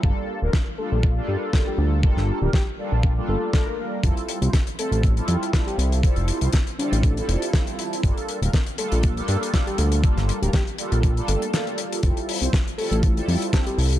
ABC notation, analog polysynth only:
X:1
M:4/4
L:1/16
Q:"Swing 16ths" 1/4=120
K:Gdor
V:1 name="Analog polysynth"
[G,B,DFA]3 [G,B,DFB] z2 [G,B,DFA]3 [G,B,DFA]3 [G,B,DFA]4 | [G,B,DFA]3 [G,B,DFB] z2 [G,B,DFA]3 [G,B,DFA]3 [G,B,DFB]4 | [G,CEFA]3 [G,CEFc] z2 [G,CEFA]3 [G,CEFA]3 [G,CEFA]4 | [G,CEFA]3 [G,CEFc] z2 [G,CEFA]3 [G,CEFA]3 [G,CEFA]4 |
[G,B,DFA]3 [G,B,DFB] z2 [G,B,DFA]3 [G,B,DFA]3 [G,B,DFA]4 | [G,B,DFA]3 [G,B,DFB] z2 [G,B,DFA]3 [G,B,DFA]3 [G,B,DFA]4 | [G,CEFA]3 [G,CEFc] z2 [G,CEFA]3 [G,CEFA]3 [G,CEFA]4 |]